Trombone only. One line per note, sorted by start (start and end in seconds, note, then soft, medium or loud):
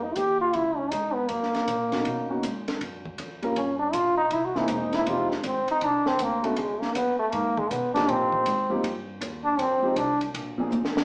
0.04 0.18 D#4 medium
0.16 0.40 G4 loud
0.41 0.57 F4 medium
0.55 0.79 E4 medium
0.77 0.92 C#4 medium
0.91 1.15 D#4 medium
1.14 1.30 B3 medium
1.29 2.43 A#3 medium
3.57 3.78 C#4 medium
3.79 3.95 D4 medium
3.93 4.17 F4 medium
4.17 4.35 D#4 loud
4.33 4.46 E4 medium
4.45 4.59 F#4 medium
4.58 4.73 E4 medium
4.72 4.94 D#4 medium
4.95 5.10 E4 loud
5.09 5.31 F4 medium
5.31 5.47 G#3 soft
5.46 5.70 C4 medium
5.71 5.86 D#4 loud
5.84 6.09 D4 medium
6.07 6.24 C4 medium
6.22 6.47 A#3 medium
6.45 6.61 A3 medium
6.59 6.82 G#3 medium
6.81 6.97 A#3 medium
6.95 7.18 B3 medium
7.19 7.33 A3 medium
7.32 7.60 A#3 loud
7.58 7.72 G#3 medium
7.71 7.93 B3 medium
7.94 8.11 D4 loud
8.10 8.84 C4 medium
9.44 9.61 D4 loud
9.59 9.99 C4 medium
9.97 10.21 D4 medium